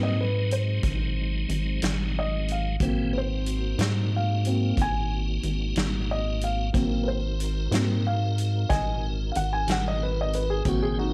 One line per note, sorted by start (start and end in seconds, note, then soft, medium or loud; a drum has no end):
0.00 0.80 G#2 medium
0.00 0.14 F#3 soft
0.00 2.76 F#3 medium
0.00 2.76 G#3 medium
0.00 0.14 A#3 soft
0.00 0.15 C4 soft
0.00 2.76 C4 medium
0.00 2.76 D#4 medium
0.00 0.18 D#5 medium
0.21 0.51 B4 medium
0.51 1.79 C5 medium
0.51 closed hi-hat medium
0.83 1.45 G#1 medium
0.83 kick medium
0.83 closed hi-hat medium
1.49 1.79 G#1 medium
1.49 closed hi-hat soft
1.82 2.77 G#1 medium
1.82 snare loud
1.82 closed hi-hat medium
2.19 2.49 D#5 medium
2.48 3.13 F5 medium
2.48 closed hi-hat medium
2.80 3.75 G#1 medium
2.80 3.13 C#3 medium
2.80 3.13 E3 medium
2.80 3.75 F#3 soft
2.80 3.75 A#3 soft
2.80 3.13 C4 medium
2.80 3.76 C4 soft
2.80 3.13 G5 soft
2.80 kick medium
2.80 closed hi-hat medium
3.13 6.70 A#3 medium
3.13 6.70 C4 medium
3.13 6.70 D#4 medium
3.13 6.70 F#4 medium
3.13 3.16 B4 soft
3.18 4.11 C5 medium
3.46 closed hi-hat medium
3.79 4.73 G#2 medium
3.79 snare loud
3.79 closed hi-hat medium
4.16 4.78 F5 medium
4.45 4.75 F#3 soft
4.45 4.75 A#3 soft
4.45 4.75 C4 soft
4.45 closed hi-hat medium
4.77 5.39 G#1 medium
4.77 kick medium
4.77 closed hi-hat medium
4.82 5.11 G#5 medium
5.43 5.73 G#1 medium
5.43 closed hi-hat soft
5.76 6.70 G#1 medium
5.76 snare medium
5.76 closed hi-hat medium
6.11 6.41 D#5 medium
6.41 7.06 F5 medium
6.41 closed hi-hat medium
6.73 7.68 G#1 medium
6.73 7.17 F#3 soft
6.73 7.17 A#3 soft
6.73 7.17 C4 soft
6.73 10.63 C4 medium
6.73 10.63 D#4 medium
6.73 10.63 F#4 medium
6.73 10.63 A#4 medium
6.73 kick medium
6.73 closed hi-hat medium
7.04 7.07 B4 soft
7.08 8.02 C5 medium
7.40 closed hi-hat medium
7.71 8.65 G#2 medium
7.71 8.01 F#3 soft
7.71 8.01 A#3 soft
7.71 8.01 C4 soft
7.71 snare loud
7.71 closed hi-hat medium
8.07 8.69 F5 medium
8.38 closed hi-hat medium
8.69 9.31 G#1 medium
8.69 9.00 D#5 medium
8.69 9.01 G#5 medium
8.69 kick medium
8.69 snare soft
8.69 closed hi-hat medium
9.32 9.36 F5 soft
9.32 closed hi-hat medium
9.36 9.66 G#1 medium
9.36 9.51 F#5 medium
9.53 9.67 G#5 medium
9.67 10.61 G#1 medium
9.67 snare medium
9.67 closed hi-hat medium
9.72 9.85 F#5 medium
9.88 10.01 D#5 medium
10.03 10.17 B4 medium
10.21 10.34 D#5 medium
10.33 10.49 B4 medium
10.33 closed hi-hat medium
10.50 10.65 G#4 medium
10.65 11.13 G#1 medium
10.65 10.98 C#3 medium
10.65 11.13 F#3 soft
10.65 11.13 A#3 soft
10.65 11.13 C4 soft
10.65 10.99 E4 medium
10.65 10.82 F#4 medium
10.65 10.98 C5 medium
10.65 10.98 G5 medium
10.65 kick loud
10.65 closed hi-hat medium
10.83 10.97 G#4 medium
10.99 11.13 C4 medium
10.99 11.13 D#4 medium
10.99 11.13 F#4 medium
10.99 11.13 A#4 medium